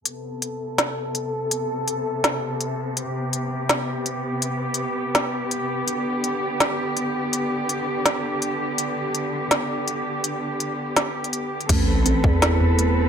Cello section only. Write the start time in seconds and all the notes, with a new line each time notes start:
0.06 C3 B3 A4
2.97 G4
5.88 D3
11.69 C4 A4 B4